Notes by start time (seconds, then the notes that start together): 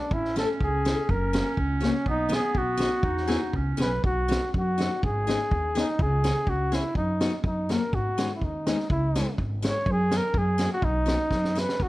Already playing: D4
0.11 A1 C#4 E4, kick
0.24 snare
0.36 A3 C#4 E4 A4, snare
0.60 C#2 G#4, kick
0.85 A3 C#4 E4, snare
1.09 F#1 C#4 A#4, kick
1.33 A#3 C#4 F#4, snare
1.57 C#2, kick
1.80 A#3 C#4 F#4, snare
2.06 B1 B3 D#4, kick
2.29 B3 D#4 F#4, snare
2.34 G#4
2.54 B1 F#4, kick
2.77 B3 D#4 F#4, snare
3.03 E2 D#4, kick
3.17 snare
3.27 B3 E4 G#4, snare
3.53 C#2 C#4, kick
3.77 B1 B3 E4 G#4, snare
3.81 B4
4.04 B1 F#4, kick
4.28 B3 D#4 F#4, snare, hi-hat pedal
4.54 F#2 F#4, kick
4.78 B3 D#4 F#4, snare, hi-hat pedal
5.03 G#1 G#4, kick
5.27 B3 D#4 G#4, snare, hi-hat pedal
5.51 D#2, kick
5.75 B3 D#4 G#4, snare, hi-hat pedal
5.99 C#2 G#4, kick
6.24 C#4 E4 G#4, snare, hi-hat pedal
6.47 C#2 F#4, kick
6.72 C#4 E4 G#4, snare, hi-hat pedal
6.95 F#2 D#4, kick
7.21 B3 D#4 F#4, snare, hi-hat pedal
7.44 F#2 D#4, kick
7.69 A#3 C#4 F#4 A#4, snare, hi-hat pedal
7.93 G#2 F#4, kick
8.18 G#3 B3 D#4, snare, hi-hat pedal
8.35 E4
8.41 D#2 D#4, kick
8.67 G#3 B3 D#4, snare, hi-hat pedal
8.79 snare
8.90 C#2 E4, kick
9.15 G#3 C#4 E4, snare, hi-hat pedal
9.38 G#1, kick
9.62 G#3 C#4 E4, snare, hi-hat pedal
9.67 C#5
9.86 F#2, kick
9.92 G#4
10.11 B3 C#4 F#4, snare, hi-hat pedal
10.17 A#4
10.34 F#2 G#4, kick
10.58 A#3 C#4 F#4, snare, hi-hat pedal
10.73 F#4
10.82 B1 D#4, kick
11.06 B3 D#4 F#4, snare, hi-hat pedal
11.31 F#2, kick, snare
11.44 snare
11.55 B3 D#4 F#4 B4, snare, hi-hat pedal
11.69 snare
11.80 E2 B3 F#4, kick